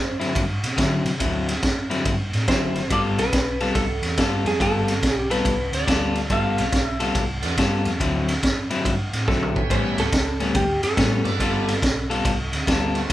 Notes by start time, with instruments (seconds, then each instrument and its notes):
Already playing: fingered electric bass F#2, lead electric guitar C5
0.20 clean electric guitar D3 F#3 C4 E4, snare, ride
0.35 fingered electric bass G2, kick, snare, ride
0.63 fingered electric bass B2, snare, ride
0.77 clean electric guitar D3 F#3 C4 E4, fingered electric bass D3, kick, snare, ride
1.05 fingered electric bass C3, snare, ride
1.20 fingered electric bass D2, clean electric guitar D3 F#3 C4 E4, kick, ride
1.48 snare, ride
1.62 fingered electric bass F#2, kick, snare, ride
1.90 clean electric guitar D3 F#3 C4 E4, snare, ride
2.05 fingered electric bass G2, kick, ride
2.32 fingered electric bass A2, snare, ride
2.48 fingered electric bass F#1, clean electric guitar D3 F#3 C4 E4, lead electric guitar C5, kick, snare, ride
2.76 snare, ride
2.90 fingered electric bass G1, clean electric guitar G3 B3 F4 A4, lead electric guitar D5, kick, ride
3.18 fingered electric bass B1, lead electric guitar B4, snare, ride
3.33 fingered electric bass B1, kick, snare, ride
3.60 clean electric guitar G3 B3 F4 A4, snare, ride
3.75 fingered electric bass C2, lead electric guitar A4, kick, snare, ride
4.02 fingered electric bass E2, snare, ride
4.17 fingered electric bass G2, clean electric guitar G3 B3 F4 A4, kick, snare, ride
4.45 fingered electric bass F2, lead electric guitar G#4, snare, ride
4.60 fingered electric bass G1, clean electric guitar G3 B3 F4 A4, lead electric guitar A4, kick, ride
4.88 snare, ride
5.03 fingered electric bass B1, kick, snare, ride
5.17 lead electric guitar G4
5.30 clean electric guitar G3 B3 F4 A4, lead electric guitar B4, snare, ride
5.45 fingered electric bass C2, kick, snare, ride
5.72 fingered electric bass D2, lead electric guitar D5, snare, ride
5.87 fingered electric bass D2, clean electric guitar G3 B3 F4 A4, kick, snare, ride
6.15 snare, ride
6.30 fingered electric bass G1, clean electric guitar G3 B3 F4 A4, lead electric guitar F5, kick, ride
6.58 fingered electric bass B1, snare, ride
6.72 fingered electric bass B1, kick, snare, ride
6.87 lead electric guitar E5
7.00 clean electric guitar G3 B3 F4 A4, snare, ride
7.15 fingered electric bass C2, kick, ride
7.42 fingered electric bass E2, tonewheel organ A3 B3 D4 F4, snare, ride
7.57 fingered electric bass G2, clean electric guitar G3 B3 F4 A4, kick, snare, ride
7.85 fingered electric bass F2, snare, ride
8.00 fingered electric bass D2, clean electric guitar D3 F#3 C4 E4, kick, snare, ride
8.28 snare, ride
8.42 fingered electric bass F#2, kick, snare, ride
8.70 clean electric guitar D3 F#3 C4 E4, snare, ride
8.85 fingered electric bass G2, kick, ride
9.13 fingered electric bass A2, snare, ride
9.28 fingered electric bass B1, clean electric guitar D3 F#3 C4 E4, lead electric guitar A4, kick, snare
9.42 mid tom
9.55 tonewheel organ B3 C#4 E4 G4, kick
9.70 fingered electric bass A1, clean electric guitar A2 G3 B3 C#4, lead electric guitar C5, kick, ride
9.97 fingered electric bass C#2, lead electric guitar A4, snare, ride
10.12 fingered electric bass C#2, kick, snare, ride
10.40 clean electric guitar A2 G3 B3 C#4, snare, ride
10.55 fingered electric bass D2, lead electric guitar G4, kick, ride
10.83 fingered electric bass F#2, lead electric guitar A4, snare, ride
10.97 clean electric guitar A2 G3 B3 C#4, fingered electric bass A2, kick, snare, ride
11.24 fingered electric bass G2, tonewheel organ B3 D4 F4 A4, snare, ride
11.40 fingered electric bass G1, clean electric guitar G3 B3 F4 A4, kick, snare, ride
11.68 snare, ride
11.82 fingered electric bass B1, kick, snare, ride
12.10 clean electric guitar G3 B3 F4 A4, snare, ride
12.25 fingered electric bass C2, kick, ride
12.52 fingered electric bass D2, snare, ride
12.67 fingered electric bass D2, clean electric guitar G3 B3 F4 A4, kick, snare, ride
12.95 tonewheel organ C4 E4 F#4 A4, snare, ride
13.10 fingered electric bass D2